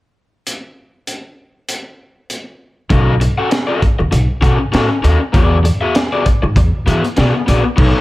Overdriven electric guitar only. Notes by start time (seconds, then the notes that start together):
2.90 C#4 F#4 A4 D#5
3.20 muted overdriven electric guitar stroke
3.38 C#4 F#4 A4 F#5
3.50 muted overdriven electric guitar stroke
3.67 C#4 F#4 A4 D#5
3.81 muted overdriven electric guitar stroke
3.99 muted overdriven electric guitar stroke
4.11 muted overdriven electric guitar stroke
4.41 C#4 F#4 A4 F#5
4.58 muted overdriven electric guitar stroke
4.72 C#4 F#4 A4 D#5
4.89 muted overdriven electric guitar stroke
5.03 C#4 F#4 A4 D#5
5.20 muted overdriven electric guitar stroke
5.33 B3 F#4 G#4 D5
5.63 muted overdriven electric guitar stroke
5.81 B3 F#4 G#4 E5
5.95 muted overdriven electric guitar stroke
6.12 B3 F#4 G#4 D5
6.25 muted overdriven electric guitar stroke
6.42 muted overdriven electric guitar stroke
6.56 muted overdriven electric guitar stroke
6.86 B3 F#4 G#4 E5
7.04 muted overdriven electric guitar stroke
7.17 B3 F#4 G#4 D5
7.34 muted overdriven electric guitar stroke
7.47 B3 F#4 G#4 D5
7.64 muted overdriven electric guitar stroke
7.76 B3 D#4 A4 C#5